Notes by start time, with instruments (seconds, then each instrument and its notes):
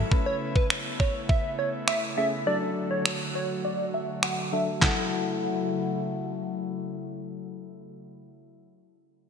Already playing: analog synth pad C#3 E4, downlifter
0.11 analog synth pad A3 B3, synth keys A3 C#4 B4, kick
0.26 digital synth lead C#5
0.56 digital synth lead B4, kick
0.70 finger snap
1.00 digital synth lead C#5, kick
1.29 digital synth lead E5, kick
1.59 digital synth lead C#5
1.88 digital synth lead E5, finger snap
2.17 synth keys A3 C#4 G#4, digital synth lead E5
2.46 analog synth pad D3 F#3 F#4, synth keys F#3 D4 A4, digital synth lead D5
2.91 digital synth lead C#5
3.06 finger snap
3.35 digital synth lead C#5
3.65 digital synth lead D5
3.94 digital synth lead E5
4.23 digital synth lead F#5, finger snap
4.52 synth keys F#3 D4 A4, digital synth lead E5
4.80 analog synth pad C#3 F#3 A3 E4, synth keys F#3 E4 A4, digital synth lead F#5, kick, snare, clap